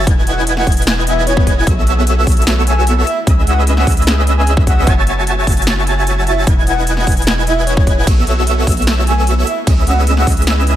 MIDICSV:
0, 0, Header, 1, 8, 480
1, 0, Start_track
1, 0, Key_signature, 4, "major"
1, 0, Tempo, 400000
1, 85, Time_signature, 4, 2, 24, 8
1, 12914, End_track
2, 0, Start_track
2, 0, Title_t, "Digital synth lead"
2, 0, Program_c, 0, 84
2, 83, Note_on_c, 0, 92, 96
2, 775, Note_off_c, 0, 92, 0
2, 2004, Note_on_c, 0, 88, 100
2, 2696, Note_off_c, 0, 88, 0
2, 2724, Note_on_c, 0, 88, 108
2, 3670, Note_off_c, 0, 88, 0
2, 3923, Note_on_c, 0, 88, 97
2, 4615, Note_off_c, 0, 88, 0
2, 4644, Note_on_c, 0, 88, 105
2, 5816, Note_off_c, 0, 88, 0
2, 5845, Note_on_c, 0, 93, 103
2, 6536, Note_off_c, 0, 93, 0
2, 6564, Note_on_c, 0, 93, 104
2, 7736, Note_off_c, 0, 93, 0
2, 7763, Note_on_c, 0, 92, 100
2, 8455, Note_off_c, 0, 92, 0
2, 8485, Note_on_c, 0, 92, 108
2, 9656, Note_off_c, 0, 92, 0
2, 9685, Note_on_c, 0, 88, 102
2, 10376, Note_off_c, 0, 88, 0
2, 10405, Note_on_c, 0, 88, 105
2, 11351, Note_off_c, 0, 88, 0
2, 11605, Note_on_c, 0, 88, 103
2, 12296, Note_off_c, 0, 88, 0
2, 12326, Note_on_c, 0, 88, 103
2, 12914, Note_off_c, 0, 88, 0
2, 12914, End_track
3, 0, Start_track
3, 0, Title_t, "Soft synth lead"
3, 0, Program_c, 1, 80
3, 324, Note_on_c, 1, 78, 86
3, 465, Note_off_c, 1, 78, 0
3, 682, Note_on_c, 1, 78, 93
3, 823, Note_off_c, 1, 78, 0
3, 1283, Note_on_c, 1, 76, 95
3, 1500, Note_off_c, 1, 76, 0
3, 1521, Note_on_c, 1, 73, 98
3, 1883, Note_off_c, 1, 73, 0
3, 3203, Note_on_c, 1, 80, 90
3, 3281, Note_off_c, 1, 80, 0
3, 3326, Note_on_c, 1, 80, 77
3, 3402, Note_off_c, 1, 80, 0
3, 3684, Note_on_c, 1, 76, 96
3, 3825, Note_off_c, 1, 76, 0
3, 4163, Note_on_c, 1, 78, 87
3, 4304, Note_off_c, 1, 78, 0
3, 4524, Note_on_c, 1, 78, 89
3, 4665, Note_off_c, 1, 78, 0
3, 5245, Note_on_c, 1, 80, 93
3, 5385, Note_off_c, 1, 80, 0
3, 5603, Note_on_c, 1, 78, 98
3, 5892, Note_off_c, 1, 78, 0
3, 7045, Note_on_c, 1, 80, 91
3, 7122, Note_off_c, 1, 80, 0
3, 7166, Note_on_c, 1, 80, 80
3, 7242, Note_off_c, 1, 80, 0
3, 7525, Note_on_c, 1, 76, 96
3, 7665, Note_off_c, 1, 76, 0
3, 8004, Note_on_c, 1, 78, 87
3, 8145, Note_off_c, 1, 78, 0
3, 8366, Note_on_c, 1, 78, 87
3, 8506, Note_off_c, 1, 78, 0
3, 8964, Note_on_c, 1, 76, 99
3, 9181, Note_off_c, 1, 76, 0
3, 9202, Note_on_c, 1, 73, 93
3, 9564, Note_off_c, 1, 73, 0
3, 10886, Note_on_c, 1, 80, 91
3, 10962, Note_off_c, 1, 80, 0
3, 11005, Note_on_c, 1, 80, 78
3, 11082, Note_off_c, 1, 80, 0
3, 11364, Note_on_c, 1, 76, 92
3, 11505, Note_off_c, 1, 76, 0
3, 11845, Note_on_c, 1, 78, 87
3, 11985, Note_off_c, 1, 78, 0
3, 12205, Note_on_c, 1, 78, 89
3, 12345, Note_off_c, 1, 78, 0
3, 12914, End_track
4, 0, Start_track
4, 0, Title_t, "Supersaw synth"
4, 0, Program_c, 2, 81
4, 83, Note_on_c, 2, 64, 95
4, 83, Note_on_c, 2, 71, 89
4, 83, Note_on_c, 2, 78, 89
4, 775, Note_off_c, 2, 64, 0
4, 775, Note_off_c, 2, 71, 0
4, 775, Note_off_c, 2, 78, 0
4, 803, Note_on_c, 2, 64, 97
4, 803, Note_on_c, 2, 75, 93
4, 1975, Note_off_c, 2, 64, 0
4, 1975, Note_off_c, 2, 75, 0
4, 2004, Note_on_c, 2, 59, 96
4, 2004, Note_on_c, 2, 66, 85
4, 2004, Note_on_c, 2, 69, 89
4, 2004, Note_on_c, 2, 73, 88
4, 2004, Note_on_c, 2, 76, 107
4, 2695, Note_off_c, 2, 66, 0
4, 2695, Note_off_c, 2, 76, 0
4, 2696, Note_off_c, 2, 59, 0
4, 2696, Note_off_c, 2, 69, 0
4, 2696, Note_off_c, 2, 73, 0
4, 2723, Note_on_c, 2, 59, 98
4, 2723, Note_on_c, 2, 69, 90
4, 2723, Note_on_c, 2, 73, 86
4, 2724, Note_on_c, 2, 66, 91
4, 2724, Note_on_c, 2, 76, 110
4, 3670, Note_off_c, 2, 59, 0
4, 3670, Note_off_c, 2, 66, 0
4, 3670, Note_off_c, 2, 69, 0
4, 3670, Note_off_c, 2, 73, 0
4, 3670, Note_off_c, 2, 76, 0
4, 3924, Note_on_c, 2, 61, 97
4, 3924, Note_on_c, 2, 68, 92
4, 3924, Note_on_c, 2, 71, 87
4, 3924, Note_on_c, 2, 75, 89
4, 3924, Note_on_c, 2, 76, 107
4, 4616, Note_off_c, 2, 61, 0
4, 4616, Note_off_c, 2, 68, 0
4, 4616, Note_off_c, 2, 71, 0
4, 4616, Note_off_c, 2, 75, 0
4, 4616, Note_off_c, 2, 76, 0
4, 4644, Note_on_c, 2, 61, 98
4, 4644, Note_on_c, 2, 68, 87
4, 5816, Note_off_c, 2, 61, 0
4, 5816, Note_off_c, 2, 68, 0
4, 5844, Note_on_c, 2, 66, 96
4, 5844, Note_on_c, 2, 73, 91
4, 5844, Note_on_c, 2, 81, 101
4, 5845, Note_on_c, 2, 76, 88
4, 5845, Note_on_c, 2, 80, 86
4, 6536, Note_off_c, 2, 66, 0
4, 6536, Note_off_c, 2, 73, 0
4, 6536, Note_off_c, 2, 76, 0
4, 6536, Note_off_c, 2, 80, 0
4, 6536, Note_off_c, 2, 81, 0
4, 6564, Note_on_c, 2, 66, 102
4, 6565, Note_on_c, 2, 76, 91
4, 7736, Note_off_c, 2, 66, 0
4, 7736, Note_off_c, 2, 76, 0
4, 7765, Note_on_c, 2, 64, 100
4, 7765, Note_on_c, 2, 71, 90
4, 7765, Note_on_c, 2, 78, 90
4, 8456, Note_off_c, 2, 64, 0
4, 8456, Note_off_c, 2, 71, 0
4, 8456, Note_off_c, 2, 78, 0
4, 8484, Note_on_c, 2, 71, 91
4, 8484, Note_on_c, 2, 75, 88
4, 8485, Note_on_c, 2, 64, 101
4, 9656, Note_off_c, 2, 64, 0
4, 9656, Note_off_c, 2, 71, 0
4, 9656, Note_off_c, 2, 75, 0
4, 9685, Note_on_c, 2, 59, 95
4, 9685, Note_on_c, 2, 66, 91
4, 9685, Note_on_c, 2, 69, 90
4, 9685, Note_on_c, 2, 73, 88
4, 10376, Note_off_c, 2, 59, 0
4, 10376, Note_off_c, 2, 66, 0
4, 10376, Note_off_c, 2, 69, 0
4, 10376, Note_off_c, 2, 73, 0
4, 10405, Note_on_c, 2, 59, 98
4, 10405, Note_on_c, 2, 66, 91
4, 10405, Note_on_c, 2, 73, 90
4, 10405, Note_on_c, 2, 76, 108
4, 11350, Note_off_c, 2, 59, 0
4, 11350, Note_off_c, 2, 73, 0
4, 11350, Note_off_c, 2, 76, 0
4, 11351, Note_off_c, 2, 66, 0
4, 11604, Note_on_c, 2, 61, 94
4, 11604, Note_on_c, 2, 68, 84
4, 11604, Note_on_c, 2, 71, 87
4, 11604, Note_on_c, 2, 75, 86
4, 11604, Note_on_c, 2, 76, 102
4, 12295, Note_off_c, 2, 61, 0
4, 12295, Note_off_c, 2, 68, 0
4, 12296, Note_off_c, 2, 71, 0
4, 12296, Note_off_c, 2, 75, 0
4, 12296, Note_off_c, 2, 76, 0
4, 12325, Note_on_c, 2, 61, 102
4, 12325, Note_on_c, 2, 71, 91
4, 12914, Note_off_c, 2, 61, 0
4, 12914, Note_off_c, 2, 71, 0
4, 12914, End_track
5, 0, Start_track
5, 0, Title_t, "Ambient pad"
5, 0, Program_c, 3, 92
5, 85, Note_on_c, 3, 52, 84
5, 85, Note_on_c, 3, 66, 77
5, 85, Note_on_c, 3, 68, 93
5, 85, Note_on_c, 3, 75, 79
5, 1986, Note_off_c, 3, 52, 0
5, 1986, Note_off_c, 3, 66, 0
5, 1986, Note_off_c, 3, 68, 0
5, 1986, Note_off_c, 3, 75, 0
5, 2004, Note_on_c, 3, 57, 85
5, 2004, Note_on_c, 3, 59, 75
5, 2004, Note_on_c, 3, 64, 90
5, 3668, Note_off_c, 3, 57, 0
5, 3668, Note_off_c, 3, 59, 0
5, 3684, Note_on_c, 3, 56, 71
5, 3685, Note_on_c, 3, 59, 71
5, 3686, Note_on_c, 3, 49, 79
5, 5823, Note_off_c, 3, 56, 0
5, 5823, Note_off_c, 3, 59, 0
5, 5824, Note_off_c, 3, 49, 0
5, 5844, Note_on_c, 3, 61, 77
5, 5845, Note_on_c, 3, 54, 81
5, 5845, Note_on_c, 3, 69, 96
5, 7716, Note_off_c, 3, 64, 0
5, 7745, Note_off_c, 3, 61, 0
5, 7746, Note_off_c, 3, 54, 0
5, 7746, Note_off_c, 3, 69, 0
5, 7764, Note_on_c, 3, 52, 84
5, 7764, Note_on_c, 3, 66, 79
5, 7764, Note_on_c, 3, 68, 97
5, 7764, Note_on_c, 3, 75, 75
5, 9665, Note_off_c, 3, 52, 0
5, 9665, Note_off_c, 3, 66, 0
5, 9665, Note_off_c, 3, 68, 0
5, 9665, Note_off_c, 3, 75, 0
5, 9685, Note_on_c, 3, 64, 94
5, 9686, Note_on_c, 3, 57, 84
5, 9686, Note_on_c, 3, 59, 80
5, 11348, Note_off_c, 3, 57, 0
5, 11348, Note_off_c, 3, 64, 0
5, 11365, Note_on_c, 3, 49, 80
5, 11365, Note_on_c, 3, 56, 69
5, 11365, Note_on_c, 3, 64, 88
5, 12914, Note_off_c, 3, 49, 0
5, 12914, Note_off_c, 3, 56, 0
5, 12914, Note_off_c, 3, 59, 0
5, 12914, Note_off_c, 3, 64, 0
5, 12914, End_track
6, 0, Start_track
6, 0, Title_t, "808-style bass"
6, 0, Program_c, 4, 38
6, 84, Note_on_c, 4, 28, 92
6, 780, Note_off_c, 4, 28, 0
6, 804, Note_on_c, 4, 28, 91
6, 1980, Note_off_c, 4, 28, 0
6, 2004, Note_on_c, 4, 35, 94
6, 2701, Note_off_c, 4, 35, 0
6, 2724, Note_on_c, 4, 35, 88
6, 3646, Note_off_c, 4, 35, 0
6, 3924, Note_on_c, 4, 37, 93
6, 4621, Note_off_c, 4, 37, 0
6, 4644, Note_on_c, 4, 37, 92
6, 5845, Note_on_c, 4, 30, 98
6, 5863, Note_off_c, 4, 37, 0
6, 6541, Note_off_c, 4, 30, 0
6, 6565, Note_on_c, 4, 30, 95
6, 7741, Note_off_c, 4, 30, 0
6, 7764, Note_on_c, 4, 28, 92
6, 8461, Note_off_c, 4, 28, 0
6, 8485, Note_on_c, 4, 28, 95
6, 9685, Note_on_c, 4, 35, 95
6, 9703, Note_off_c, 4, 28, 0
6, 10381, Note_off_c, 4, 35, 0
6, 10405, Note_on_c, 4, 35, 91
6, 11327, Note_off_c, 4, 35, 0
6, 11605, Note_on_c, 4, 37, 94
6, 12301, Note_off_c, 4, 37, 0
6, 12325, Note_on_c, 4, 37, 90
6, 12914, Note_off_c, 4, 37, 0
6, 12914, End_track
7, 0, Start_track
7, 0, Title_t, "Swell"
7, 0, Program_c, 5, 103
7, 1043, Note_on_c, 5, 60, 59
7, 2004, Note_off_c, 5, 60, 0
7, 12914, End_track
8, 0, Start_track
8, 0, Title_t, "Drums"
8, 84, Note_on_c, 9, 36, 116
8, 84, Note_on_c, 9, 42, 86
8, 204, Note_off_c, 9, 36, 0
8, 204, Note_off_c, 9, 42, 0
8, 323, Note_on_c, 9, 42, 67
8, 443, Note_off_c, 9, 42, 0
8, 563, Note_on_c, 9, 42, 88
8, 683, Note_off_c, 9, 42, 0
8, 684, Note_on_c, 9, 38, 34
8, 803, Note_on_c, 9, 36, 59
8, 803, Note_on_c, 9, 42, 52
8, 804, Note_off_c, 9, 38, 0
8, 864, Note_off_c, 9, 42, 0
8, 864, Note_on_c, 9, 42, 68
8, 923, Note_off_c, 9, 36, 0
8, 924, Note_off_c, 9, 42, 0
8, 924, Note_on_c, 9, 42, 50
8, 983, Note_off_c, 9, 42, 0
8, 983, Note_on_c, 9, 42, 64
8, 1044, Note_on_c, 9, 38, 115
8, 1103, Note_off_c, 9, 42, 0
8, 1164, Note_off_c, 9, 38, 0
8, 1284, Note_on_c, 9, 42, 72
8, 1404, Note_off_c, 9, 42, 0
8, 1524, Note_on_c, 9, 42, 82
8, 1644, Note_off_c, 9, 42, 0
8, 1644, Note_on_c, 9, 36, 104
8, 1764, Note_off_c, 9, 36, 0
8, 1764, Note_on_c, 9, 36, 57
8, 1764, Note_on_c, 9, 42, 70
8, 1884, Note_off_c, 9, 36, 0
8, 1884, Note_off_c, 9, 42, 0
8, 2003, Note_on_c, 9, 42, 87
8, 2004, Note_on_c, 9, 36, 118
8, 2123, Note_off_c, 9, 42, 0
8, 2124, Note_off_c, 9, 36, 0
8, 2244, Note_on_c, 9, 42, 70
8, 2364, Note_off_c, 9, 42, 0
8, 2483, Note_on_c, 9, 42, 84
8, 2603, Note_off_c, 9, 42, 0
8, 2723, Note_on_c, 9, 46, 88
8, 2724, Note_on_c, 9, 36, 60
8, 2783, Note_on_c, 9, 42, 70
8, 2843, Note_off_c, 9, 42, 0
8, 2843, Note_off_c, 9, 46, 0
8, 2843, Note_on_c, 9, 42, 48
8, 2844, Note_off_c, 9, 36, 0
8, 2902, Note_off_c, 9, 42, 0
8, 2902, Note_on_c, 9, 42, 67
8, 2963, Note_off_c, 9, 42, 0
8, 2963, Note_on_c, 9, 38, 118
8, 2963, Note_on_c, 9, 42, 88
8, 3083, Note_off_c, 9, 38, 0
8, 3083, Note_off_c, 9, 42, 0
8, 3203, Note_on_c, 9, 42, 69
8, 3323, Note_off_c, 9, 42, 0
8, 3444, Note_on_c, 9, 42, 81
8, 3564, Note_off_c, 9, 42, 0
8, 3684, Note_on_c, 9, 42, 69
8, 3804, Note_off_c, 9, 42, 0
8, 3924, Note_on_c, 9, 36, 127
8, 3925, Note_on_c, 9, 42, 82
8, 4044, Note_off_c, 9, 36, 0
8, 4045, Note_off_c, 9, 42, 0
8, 4165, Note_on_c, 9, 42, 67
8, 4285, Note_off_c, 9, 42, 0
8, 4405, Note_on_c, 9, 42, 86
8, 4524, Note_on_c, 9, 38, 35
8, 4525, Note_off_c, 9, 42, 0
8, 4644, Note_off_c, 9, 38, 0
8, 4644, Note_on_c, 9, 36, 62
8, 4644, Note_on_c, 9, 46, 90
8, 4705, Note_on_c, 9, 42, 67
8, 4764, Note_off_c, 9, 36, 0
8, 4764, Note_off_c, 9, 46, 0
8, 4765, Note_off_c, 9, 42, 0
8, 4765, Note_on_c, 9, 42, 49
8, 4825, Note_off_c, 9, 42, 0
8, 4825, Note_on_c, 9, 42, 63
8, 4885, Note_off_c, 9, 42, 0
8, 4885, Note_on_c, 9, 38, 122
8, 4885, Note_on_c, 9, 42, 85
8, 5005, Note_off_c, 9, 38, 0
8, 5005, Note_off_c, 9, 42, 0
8, 5125, Note_on_c, 9, 42, 68
8, 5245, Note_off_c, 9, 42, 0
8, 5364, Note_on_c, 9, 42, 75
8, 5484, Note_off_c, 9, 42, 0
8, 5484, Note_on_c, 9, 36, 113
8, 5604, Note_off_c, 9, 36, 0
8, 5604, Note_on_c, 9, 36, 63
8, 5604, Note_on_c, 9, 42, 70
8, 5724, Note_off_c, 9, 36, 0
8, 5724, Note_off_c, 9, 42, 0
8, 5844, Note_on_c, 9, 36, 125
8, 5844, Note_on_c, 9, 42, 77
8, 5964, Note_off_c, 9, 36, 0
8, 5964, Note_off_c, 9, 42, 0
8, 6084, Note_on_c, 9, 42, 66
8, 6204, Note_off_c, 9, 42, 0
8, 6324, Note_on_c, 9, 42, 80
8, 6444, Note_off_c, 9, 42, 0
8, 6564, Note_on_c, 9, 36, 64
8, 6565, Note_on_c, 9, 46, 91
8, 6624, Note_on_c, 9, 42, 63
8, 6684, Note_off_c, 9, 36, 0
8, 6685, Note_off_c, 9, 42, 0
8, 6685, Note_off_c, 9, 46, 0
8, 6685, Note_on_c, 9, 42, 49
8, 6744, Note_off_c, 9, 42, 0
8, 6744, Note_on_c, 9, 42, 60
8, 6803, Note_off_c, 9, 42, 0
8, 6803, Note_on_c, 9, 38, 126
8, 6803, Note_on_c, 9, 42, 81
8, 6923, Note_off_c, 9, 38, 0
8, 6923, Note_off_c, 9, 42, 0
8, 7043, Note_on_c, 9, 42, 65
8, 7163, Note_off_c, 9, 42, 0
8, 7283, Note_on_c, 9, 42, 76
8, 7403, Note_off_c, 9, 42, 0
8, 7523, Note_on_c, 9, 42, 66
8, 7643, Note_off_c, 9, 42, 0
8, 7764, Note_on_c, 9, 36, 120
8, 7764, Note_on_c, 9, 42, 78
8, 7884, Note_off_c, 9, 36, 0
8, 7884, Note_off_c, 9, 42, 0
8, 8004, Note_on_c, 9, 42, 61
8, 8124, Note_off_c, 9, 42, 0
8, 8244, Note_on_c, 9, 42, 79
8, 8364, Note_off_c, 9, 42, 0
8, 8364, Note_on_c, 9, 38, 37
8, 8483, Note_on_c, 9, 46, 89
8, 8484, Note_off_c, 9, 38, 0
8, 8485, Note_on_c, 9, 36, 64
8, 8544, Note_on_c, 9, 42, 61
8, 8603, Note_off_c, 9, 46, 0
8, 8604, Note_off_c, 9, 42, 0
8, 8604, Note_on_c, 9, 42, 46
8, 8605, Note_off_c, 9, 36, 0
8, 8664, Note_off_c, 9, 42, 0
8, 8664, Note_on_c, 9, 42, 60
8, 8724, Note_off_c, 9, 42, 0
8, 8724, Note_on_c, 9, 38, 125
8, 8724, Note_on_c, 9, 42, 79
8, 8844, Note_off_c, 9, 38, 0
8, 8844, Note_off_c, 9, 42, 0
8, 8964, Note_on_c, 9, 42, 63
8, 9084, Note_off_c, 9, 42, 0
8, 9205, Note_on_c, 9, 42, 76
8, 9325, Note_off_c, 9, 42, 0
8, 9325, Note_on_c, 9, 36, 113
8, 9444, Note_on_c, 9, 42, 67
8, 9445, Note_off_c, 9, 36, 0
8, 9445, Note_on_c, 9, 36, 63
8, 9564, Note_off_c, 9, 42, 0
8, 9565, Note_off_c, 9, 36, 0
8, 9685, Note_on_c, 9, 36, 121
8, 9686, Note_on_c, 9, 42, 82
8, 9686, Note_on_c, 9, 51, 53
8, 9805, Note_off_c, 9, 36, 0
8, 9806, Note_off_c, 9, 42, 0
8, 9806, Note_off_c, 9, 51, 0
8, 9925, Note_on_c, 9, 42, 64
8, 10045, Note_off_c, 9, 42, 0
8, 10164, Note_on_c, 9, 42, 79
8, 10284, Note_off_c, 9, 42, 0
8, 10404, Note_on_c, 9, 46, 95
8, 10405, Note_on_c, 9, 36, 65
8, 10464, Note_on_c, 9, 42, 62
8, 10524, Note_off_c, 9, 46, 0
8, 10525, Note_off_c, 9, 36, 0
8, 10525, Note_off_c, 9, 42, 0
8, 10525, Note_on_c, 9, 42, 44
8, 10585, Note_off_c, 9, 42, 0
8, 10585, Note_on_c, 9, 42, 58
8, 10646, Note_off_c, 9, 42, 0
8, 10646, Note_on_c, 9, 38, 120
8, 10646, Note_on_c, 9, 42, 77
8, 10646, Note_on_c, 9, 51, 43
8, 10766, Note_off_c, 9, 38, 0
8, 10766, Note_off_c, 9, 42, 0
8, 10766, Note_off_c, 9, 51, 0
8, 10885, Note_on_c, 9, 42, 64
8, 11005, Note_off_c, 9, 42, 0
8, 11125, Note_on_c, 9, 42, 78
8, 11245, Note_off_c, 9, 42, 0
8, 11364, Note_on_c, 9, 42, 67
8, 11484, Note_off_c, 9, 42, 0
8, 11604, Note_on_c, 9, 36, 120
8, 11605, Note_on_c, 9, 42, 80
8, 11605, Note_on_c, 9, 51, 52
8, 11724, Note_off_c, 9, 36, 0
8, 11725, Note_off_c, 9, 42, 0
8, 11725, Note_off_c, 9, 51, 0
8, 11843, Note_on_c, 9, 42, 67
8, 11963, Note_off_c, 9, 42, 0
8, 12084, Note_on_c, 9, 42, 80
8, 12204, Note_off_c, 9, 42, 0
8, 12205, Note_on_c, 9, 38, 34
8, 12324, Note_on_c, 9, 46, 97
8, 12325, Note_off_c, 9, 38, 0
8, 12325, Note_on_c, 9, 36, 60
8, 12384, Note_on_c, 9, 42, 64
8, 12444, Note_off_c, 9, 46, 0
8, 12445, Note_off_c, 9, 36, 0
8, 12445, Note_off_c, 9, 42, 0
8, 12445, Note_on_c, 9, 42, 47
8, 12504, Note_off_c, 9, 42, 0
8, 12504, Note_on_c, 9, 42, 63
8, 12565, Note_off_c, 9, 42, 0
8, 12565, Note_on_c, 9, 38, 116
8, 12565, Note_on_c, 9, 42, 83
8, 12565, Note_on_c, 9, 51, 44
8, 12685, Note_off_c, 9, 38, 0
8, 12685, Note_off_c, 9, 42, 0
8, 12685, Note_off_c, 9, 51, 0
8, 12804, Note_on_c, 9, 42, 68
8, 12914, Note_off_c, 9, 42, 0
8, 12914, End_track
0, 0, End_of_file